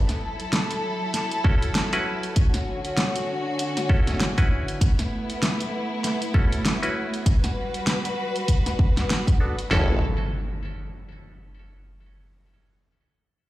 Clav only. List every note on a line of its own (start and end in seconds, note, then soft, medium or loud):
1.44 1.89 C#4 medium
1.44 1.89 E4 medium
1.44 1.89 F#4 medium
1.44 1.89 A4 loud
1.93 2.35 C#4 loud
1.93 2.35 E4 medium
1.93 2.35 F#4 medium
1.93 2.35 B4 loud
3.89 4.34 C#4 medium
3.89 4.34 E4 medium
3.89 4.34 F#4 medium
3.89 4.34 A4 loud
4.38 4.80 C#4 loud
4.38 4.80 E4 medium
4.38 4.80 F#4 medium
4.38 4.80 B4 loud
6.34 6.78 C#4 medium
6.34 6.78 E4 medium
6.34 6.79 F#4 medium
6.34 6.78 A4 loud
6.82 7.25 C#4 loud
6.82 7.25 E4 medium
6.82 7.25 F#4 medium
6.82 7.25 B4 loud
9.40 9.56 B3 medium
9.40 9.56 D4 medium
9.40 9.56 F#4 medium
9.40 9.56 A4 medium
9.71 9.95 C#4 medium
9.71 9.95 E4 medium
9.71 9.95 F#4 medium
9.71 9.95 A4 loud